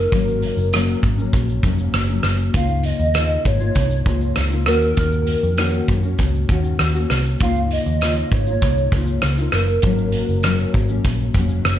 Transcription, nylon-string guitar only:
Already playing: A#3 D#4 F4
0.11 G#2 F#3 A#3 C#4
0.71 G#2 F#3 A#3 C#4
1.17 F#3 A#3 C#4
1.63 G#2 F#3 A#3 C#4
2.09 F#3 A#3 C#4
2.54 C#3 A#3 D#4 F4
3.14 C#3 A#3 D#4 F4
3.60 A#3 D#4 F4
4.05 C#3 A#3 D#4 F4
4.50 A#3 D#4 F4
4.66 D#3 A#3 C#4 F#4
5.56 D#3 A#3 C#4 F#4
6.02 A#3 C#4 F#4
6.49 D#3 A#3 C#4 F#4
6.95 A#3 C#4 F#4
7.40 C#3 A#3 D#4 F4
8.01 C#3 A#3 D#4 F4
8.47 A#3 D#4 F4
8.93 C#3 A#3 D#4 F4
9.38 A#3 D#4 F4
9.84 G#2 F#3 A#3 C#4
10.43 G#2 F#3 A#3 C#4
10.89 F#3 A#3 C#4
11.34 G#2 F#3 A#3 C#4

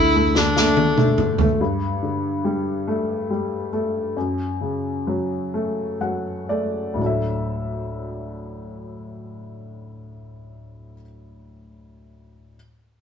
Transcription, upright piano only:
Already playing: D3 A3
0.16 A3
0.36 D3
0.58 A3
0.77 D3
0.99 A3
1.19 D3
1.40 A3
1.61 G2
2.03 D3
2.45 G3
2.88 A3
3.30 G3
3.73 A3
4.17 F#2
4.61 C#3
5.07 F#3
5.54 A3
6.01 F#3 F#5
6.49 A3 D5
6.93 D2 A2
6.98 F#3 D4
7.04 A4 E5

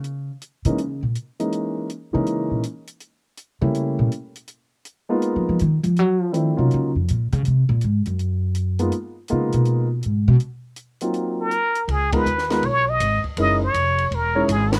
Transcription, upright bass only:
Already playing: C#3
0.65 C#3
1.03 A#2
2.15 C#3
2.51 A#2
3.62 C#3
3.99 A#2
5.36 F#3
5.49 F3
5.61 D#3
5.83 F3
5.99 F#3
6.22 F3
6.36 D#3
6.58 C3
6.74 C#3
6.95 F2
7.10 A#2
7.33 C#3
7.47 C3
7.69 A#2
7.84 G#2
8.07 F#2
9.32 C#3
9.54 B2
10.05 G#2
10.28 B2
11.88 C#2
12.25 D#2
12.62 B1
13.00 G#1
13.37 F#1
13.74 F1
14.11 E1
14.48 G#1

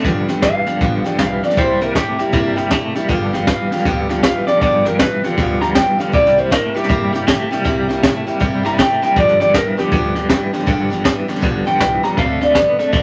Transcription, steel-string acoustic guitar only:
0.05 G2 D3 F3 B3 D4 G4
0.29 F3 B3 D4 G4
0.42 F3 B3 D4 G4
0.66 F3 B3 D4 G4
0.81 G2 D3 F3 B3 D4 G4
1.04 F3 B3 D4 G4
1.19 F3 B3 D4 G4
1.43 F3 B3 D4 G4
1.56 C3 G3 A#3 E4 G4
1.81 A#3 E4 G4
1.95 G3 A#3 E4 G4
2.19 A#3 E4 G4
2.32 C3 G3 A#3 E4 G4
2.56 A#3 E4 G4
2.70 G3 A#3 E4 G4
2.95 A#3 E4 G4
3.09 G2 D3 F3 B3 F4 G4
3.33 F3 B3 F4 G4
3.48 F3 B3 F4 G4
3.73 F3 B3 F4 G4
3.86 G2 D3 F3 B3 F4 G4
4.09 F3 B3 F4 G4
4.23 F3 B3 F4 G4
4.48 F3 B3 F4 G4
4.61 G2 D3 F3 B3 F4 G4
4.86 F3 B3 F4 G4
5.00 F3 B3 F4 G4
5.24 F3 B3 F4 G4
5.38 G2 D3 F3 B3 F4 G4
5.61 F3 B3 F4 G4
5.75 F3 B3 F4 G4
5.99 F3 B3 F4 G4
6.12 C3 G3 A#3 E4 G4
6.36 A#3 E4 G4
6.50 G3 A#3 E4 G4
6.74 A#3 E4 G4
6.89 C3 G3 A#3 E4 G4
7.13 A#3 E4 G4
7.27 G3 A#3 E4 G4
7.51 A#3 E4 G4
7.64 C3 G3 A#3 E4 G4
7.89 A#3 E4 G4
8.03 G3 A#3 E4 G4
8.27 A#3 E4 G4
8.40 C3 G3 A#3 E4 G4
8.63 A#3 E4 G4
8.77 G3 A#3 E4 G4
9.02 A#3 E4 G4
9.16 G2 D3 F3 B3 D4 G4
9.40 F3 B3 D4 G4
9.54 F3 B3 D4 G4
9.77 F3 B3 D4 G4
9.92 G2 D3 F3 B3 D4 G4
10.15 F3 B3 D4 G4
10.29 F3 B3 D4 G4
10.53 F3 B3 D4 G4
10.66 G2 D3 F3 B3 D4 G4
10.90 F3 B3 D4 G4
11.04 F3 B3 D4 G4
11.28 F3 B3 D4 G4
11.41 G2 D3 F3 B3 D4 G4
11.65 F3 B3 D4 G4
11.78 F3 B3 D4 G4
12.03 F3 B3 D4 G4
12.17 D3 F#3 C4 D4 A4
12.41 C4 D4 A4
12.55 F#3 C4 D4 A4
12.79 C4 D4 A4
12.92 D3 F#3 C4 D4 A4

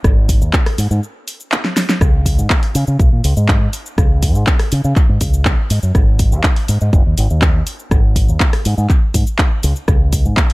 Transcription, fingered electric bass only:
0.04 G#1
0.42 D#2
0.78 G#2
0.91 G#2
2.01 C#2
2.38 G#2
2.75 C#3
2.88 C#3
3.00 B1
3.12 A#2
3.24 C#2
3.37 G#2
3.98 C#2
4.35 G#2
4.72 C#3
4.85 C#3
5.09 G#2
5.21 C#2
5.71 G#2
5.83 F#2
5.95 G#1
6.32 D#2
6.69 G#2
6.81 G#2
6.93 F#1
7.06 D#2
7.18 G#1
7.31 D#2
7.91 G#1
8.29 D#2
8.66 G#2
8.78 G#2
9.15 G#2
9.64 C#2
9.88 C#2
10.26 G#2

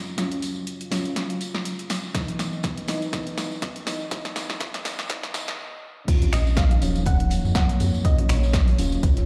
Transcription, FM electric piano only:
Already playing: F#3 C#4 F4
0.17 F#3 C#4 F4
0.91 F#3 C#4 F4
2.14 E3 B3 D#4
2.87 E3 B3 D#4
3.12 E3 B3 D#4
3.86 E3 B3 D#4
4.10 E3 B3 D#4
4.60 E3 B3
5.09 E3 B3 D#4
5.33 E3 B3 D#4
6.07 F#3 C#4 F4
6.81 F3 F#3 C#4
8.04 F#3 C#4 F4
8.78 F#3 C#4 F4

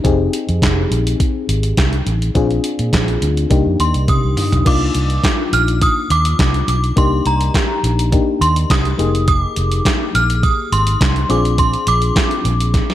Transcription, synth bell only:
3.80 C6
4.09 D#6
4.67 D6
5.53 F6
5.82 D#6
6.11 D6
6.69 D6
6.98 C6
7.27 A#5
8.41 C6
8.71 D#6
9.28 D#6
9.39 D6
10.15 F6
10.43 D#6
10.73 C6
11.30 D6
11.59 C6
11.88 D6

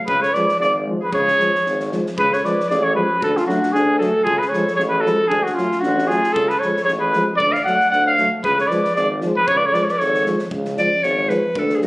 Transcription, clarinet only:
0.06 G#4
0.21 A4
0.33 B4
0.59 G#4
1.00 G#4
1.11 G#4
2.16 G#4
2.31 A4
2.44 B4
2.70 G#4
2.83 A4
2.95 G#4
3.19 F#4
3.34 C#4
3.46 D4
3.72 D4
3.98 F#4
4.24 F4
4.37 G#4
4.51 A4
4.76 G#4
4.91 G#4
5.01 F#4
5.28 D4
5.41 D4
5.53 C#4
5.80 D4
6.06 F4
6.32 F4
6.47 G#4
6.58 A4
6.84 G#4
6.99 G#4
7.37 A4
7.52 C#5
7.62 D5
7.89 D5
8.04 C#5
8.44 G#4
8.57 A4
8.70 B4
8.95 G#4
9.38 G#4
9.49 G#4
9.57 B4
9.65 A4
9.73 B4
9.82 A4
9.90 B4
9.97 A4
10.78 D5
11.03 C#5
11.30 B4
11.58 A4
11.75 G#4
11.83 F#4

